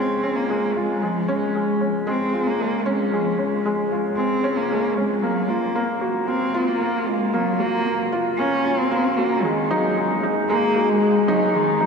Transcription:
Already playing: G#3 C4 C#4 F4
0.24 C#4
0.37 A#3
0.50 G#3
0.76 G#3 F4
1.02 F3 G#3
1.28 G#3 C#4
1.55 G#3
1.81 C#4
2.07 G#3 C4
2.34 F4
2.47 A#3
2.60 G#3
2.86 G#3 C#4
3.13 F3 G#3
3.38 G#3 C#4
3.65 G#3
3.92 F4
4.17 G#3 C4
4.44 C#4
4.57 A#3
4.71 G#3
4.97 G#3 C#4
5.23 F#3 A#3
5.49 A#3 F4
5.75 A#3
6.01 F#4
6.27 A#3 C4
6.54 F4
6.68 A#3
6.81 A#3
7.07 G#3 F4
7.34 F#3 A#3
7.60 A#3 F#4
7.86 A#3
8.12 F4
8.38 A#3 C#4
8.65 F4
8.78 C4
8.91 A#3
9.17 A#3 F#4
9.44 D#3 G#3
9.71 F#3 D#4
9.97 G#3
10.23 D#4
10.49 G#3 A#3
10.76 F#4
10.90 G#3
11.02 G#3
11.28 F#3 D#4
11.55 D#3 G#3
11.81 F#3 D#4

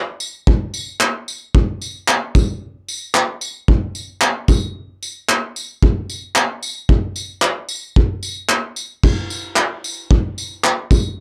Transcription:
0.20 tambourine
0.47 kick
0.74 tambourine
1.00 clap
1.28 tambourine
1.55 kick
1.82 tambourine
2.08 clap
2.35 kick, tambourine
2.88 tambourine
3.15 clap
3.41 tambourine
3.68 kick
3.95 tambourine
4.21 clap
4.48 kick, tambourine
5.03 tambourine
5.29 clap
5.56 tambourine
5.82 kick
6.10 tambourine
6.35 clap
6.63 tambourine
6.89 kick
7.16 tambourine
7.42 clap
7.69 tambourine
7.96 kick
8.23 tambourine
8.49 clap
8.76 tambourine
9.03 kick, crash
9.30 tambourine
9.56 clap
9.84 tambourine
10.11 kick
10.38 tambourine
10.64 clap
10.91 kick, tambourine

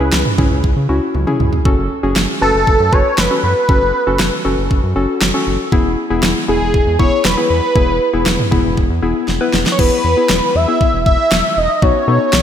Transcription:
Already playing: B4
0.00 C#2 C#4 E4 G#4
0.13 C#2, snare
0.25 mid tom
0.38 C#2 C#4 E4 G#4, kick, mid tom
0.51 C#2
0.64 C#2, kick
0.76 C#3
0.89 C#2 C#4 E4 F#4
1.15 C#2, high tom
1.27 C#4 E4 G#4, mid tom
1.40 C#2, mid tom
1.53 floor tom
1.65 F#1 C#4 F#4 A4, kick
1.78 F#1
2.03 F#1 C#4 F#4 G#4
2.16 F#1, snare
2.41 F#1 C#4 F#4 A4 B4
2.54 F#1
2.67 F#1, kick
2.80 F#2
2.92 F#1 C#4 F#4 B4 C#5, kick
3.18 F#1 B4, snare
3.31 C#4 F#4 A4
3.43 F#2 B4
3.69 F#1 C#4 F#4 A4, kick
3.82 F#1
4.07 F#1 C#4 F#4 A4
4.20 F#1, snare
4.45 F#1 C#4 F#4 A4
4.58 F#1
4.71 F#1, kick
4.83 F#2
4.96 F#1 C#4 F#4 A4
5.21 F#1, snare
5.34 C#4 F#4 A4
5.47 F#1
5.72 E1 B3 E4 G#4, kick
5.85 E1
6.10 E1 B3 E4 G#4
6.23 E1, snare
6.48 E1 B3 E4 G#4
6.61 E1
6.74 E1, kick
6.87 E2
6.99 E1 B3 E4 G#4 C#5, kick
7.25 E1 B4, snare
7.37 B3 E4 G#4
7.50 E2 B4
7.75 E1 B3 E4 G#4, kick
7.88 E1
8.13 E1 B3 E4 G#4
8.26 E1, snare
8.39 mid tom
8.51 E1 B3 E4 G#4, kick, mid tom
8.65 E1
8.77 E1, kick
8.90 E2
9.02 E1 B3 E4 G#4
9.28 E1, snare
9.41 B3 E4 B4
9.53 E1, snare
9.66 snare
9.72 C#5
9.79 E1 B3 E4 G#4 B4, kick, crash
10.04 E2
10.17 B3 E4 G#4
10.29 E1, snare
10.55 E2 E5
10.68 B3 E4 G#4
10.81 kick
10.93 E1
11.06 E1 E5, kick
11.31 E1, snare
11.57 E1 D#5
11.76 D#5
11.82 B1 B3 D#4 F#4 C#5, kick
12.08 B2 B3 D#4 A4
12.33 B1, snare

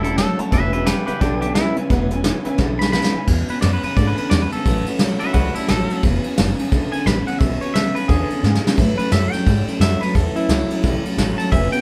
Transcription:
Already playing: E1
0.03 A2 F#3 G3 A3 C#4 E4 F#4 A4 C#5 E5 A5, closed hi-hat
0.17 A2 F#3 A3 C#4 A4 C#5 E5 A5, snare, closed hi-hat
0.37 A2 F#3 A3 C#4 F#4 C#5 E5 A5, muted upright bass stroke, closed hi-hat
0.51 E1 E2 B2 E3 G#3 B3 C#4 G#4 B4 E5 G#5, kick, closed hi-hat
0.73 E2 B2 B3 C#4 G#4 B4 E5 G#5, closed hi-hat
0.86 E2 C#3 G#3 B3 C#4 G4 G#4 B4 E5 B5, snare, closed hi-hat
1.06 E2 C#3 B3 C#4 G4 G#4 B4 E5 F#5, muted upright bass stroke, closed hi-hat
1.20 B1 E2 D3 E3 G#3 B3 C#4 D4 G4 G#4 B4 E5 B5, kick, closed hi-hat
1.41 E2 D3 B3 C#4 D4 G4 G#4 B4 E5 G#5, closed hi-hat
1.55 E2 C#3 G#3 B3 C#4 E4 G#4 B4 E5 G#5, snare, closed hi-hat
1.76 E2 C#3 B3 C#4 G#4 B4 E5 G#5, muted upright bass stroke, closed hi-hat
1.90 E1 E2 B2 E3 G#3 B3 C#4 G#4 B4 E5 F#5, kick, closed hi-hat
2.10 E2 B2 B3 C#4 G#4 B4 E5 G#5, closed hi-hat
2.24 E2 C#3 G#3 B3 C#4 G#4 B4 E5 G#5, snare, closed hi-hat
2.45 E2 C#3 B3 C#4 G#4 B4 E5 G#5, muted upright bass stroke, closed hi-hat
2.58 B1 E2 D3 E3 G#3 B3 C#4 G#4 B4 E5 F#5, kick, snare
2.79 E2 D3 B3 C#4 G#4 B4 E5 G#5 B5, snare
2.92 E2 C#3 G#3 B3 C#4 G#4 B4 E5 F#5 B5, snare
3.04 snare
3.13 E2 C#3 B3 C#4 G#4 B4 E5 G#5, muted upright bass stroke
3.28 E2 B2 E3 G#3 B3 C#4 G#4, kick, crash
3.48 E2 B2 C#4 G#4 B4, muted upright bass stroke, ride
3.52 B3
3.61 E2 F#2 C#3 B3 C#4 D5, snare, ride
3.73 B4
3.83 E2 C#3 B3 C#4 G#4 B4, muted upright bass stroke, ride
3.97 E2 G#2 D3 E3 G#3 B3 C#4 G#4 D5, kick, ride
4.07 B4
4.17 E2 D3 C#4 G#4 B4, muted upright bass stroke, ride
4.21 B3
4.30 E2 C#3 B3 C#4 D5, snare, ride
4.34 G#4
4.42 B4
4.52 E2 C#3 B3 C#4 G#4 A4, muted upright bass stroke, ride
4.66 A1 A2 E3 F#3 A3 C#4 F#4, kick, ride
4.86 A2 E3 F#3 A3 C#4 F#4, ride
4.99 B1 A2 F#3 A3 C#4 F#4, snare, ride
5.19 A2 F#3 A3 C#4 F#4 B4 E5, muted upright bass stroke, ride
5.24 F#3
5.33 C#2 A2 E3 F#3 G3 A3 C#4 F#4 B4, kick, ride
5.55 A2 F#3 G3 A3 C#4 E4 F#4 A4, muted upright bass stroke, ride
5.68 A1 A2 F#3 A3 C#4 F#4 A4, snare, ride
5.90 A2 F#3 A3 C#4 F#4, muted upright bass stroke, ride
6.03 E1 E2 B2 E3 G#3 B3 C#4 G#4, kick, ride
6.24 E2 B2 B3 C#4 G#4, muted upright bass stroke, ride
6.38 F#1 E2 C#3 G#3 B3 C#4 G#4, snare, ride
6.58 E2 C#3 B3 C#4 G#4, muted upright bass stroke, ride
6.72 G#1 E2 D3 E3 G#3 B3 C#4 G#4, kick, ride
6.92 E2 D3 B3 C#4 G#4 G#5, muted upright bass stroke, ride
7.06 A1 E2 C#3 G#3 B3 C#4 G#4 B5, snare, ride
7.26 E2 C#3 B3 C#4 G#4 F#5, muted upright bass stroke, ride
7.38 B1 E2 B2 E3 G#3 B3 C#4 G#4 E5, kick, ride
7.60 E2 B2 B3 C#4 G#4 C#5, muted upright bass stroke, ride
7.74 C#2 E2 C#3 G#3 B3 C#4 E5, snare, ride
7.95 E2 C#3 B3 C#4 G#4 B4, muted upright bass stroke, ride
8.08 E2 D3 E3 G#3 B3 C#4 G#4, kick, ride
8.29 E2 D3 B3 C#4 G#4, muted upright bass stroke, ride
8.42 E2 G#2 C#3 G#3 B3 C#4 G#4, snare
8.55 snare
8.63 E2 C#3 B3 C#4 G#4, muted upright bass stroke, snare
8.76 A2 E3 F#3 A3 C#4 A4, kick, ride
8.96 A2 E3 F#3 A3 C#4 A4 B4, muted upright bass stroke, ride
9.10 F#2 A2 F#3 A3 C#4 A4 E5, snare, ride
9.32 A2 F#3 A3 C#4 A4 G5, muted upright bass stroke, snare, ride
9.46 G#2 A2 E3 F#3 G3 A3 C#4 A4, kick, ride
9.67 A2 F#3 G3 A3 C#4 A4, muted upright bass stroke, ride
9.79 F#2 A2 F#3 A3 C#4 A4 E5, snare, ride
10.01 A2 F#3 A3 C#4 A4 B4, muted upright bass stroke, ride
10.14 E2 A2 E3 F#3 A3 C#4 A4, kick, ride
10.34 A2 E3 F#3 A3 C#4 E4 A4, muted upright bass stroke, ride
10.48 C#2 A2 F#3 C#4 A4, snare, ride
10.68 A2 F#3 A3 C#4 A4, muted upright bass stroke, ride
10.82 B1 A2 E3 F#3 G3 A3 C#4 A4, kick, ride
11.03 A2 F#3 G3 A3 C#4 A4, muted upright bass stroke, ride
11.17 A1 A2 F#3 A3 C#4 A4, snare, ride
11.37 A2 F#3 A3 C#4 A4 A5, muted upright bass stroke, ride
11.51 E1 E2 B2 E3 G#3 B3 C#4 G#4 B4 E5 G#5, kick, ride
11.72 E2 B2 B3 C#4 G#4 B4 E5 F#5 G5, muted upright bass stroke, ride

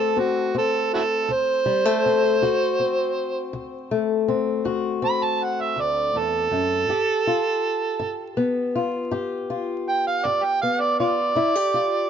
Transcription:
Already playing: A3 C4 F#4 A4
0.16 D2 C4 F#4
0.55 C4 A4
0.94 E4 F#4 A4
1.29 D2 C5
1.66 G3
1.85 A3
2.06 C4
2.42 D2 F#4
2.80 C4
3.53 D2
3.91 A3
4.28 C4
4.65 D2 F#4
5.02 C4 B5
5.23 A5
5.43 F#5
5.61 E5
5.76 D2
5.81 D5
6.15 E2 A4
6.51 F#2
6.89 G2 G4
7.27 F4
7.99 G2
8.37 B3
8.75 F4
9.11 G2 G4
9.50 F4
9.88 G5
10.07 F5
10.25 G2 D5
10.44 G5
10.62 B3 F5
10.80 D5
10.99 F4 D5
11.35 G2 E4
11.55 G4
11.74 F4

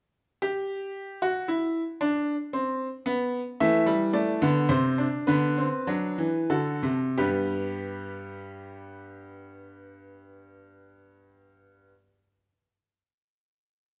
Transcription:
0.42 G4
1.22 F#4
1.48 E4
2.01 D4
2.53 C4
3.06 B3
3.60 E3 A3 E5
3.86 G3
4.13 A3 D5
4.42 D3 B3
4.69 C3 C4 C5
4.98 D4
5.27 D3 B3 B4
5.58 C4
5.87 F#3 D4
6.18 E3
6.50 D3 F#4 A4
6.83 C3
7.18 G2 G3 B3 G4 B4

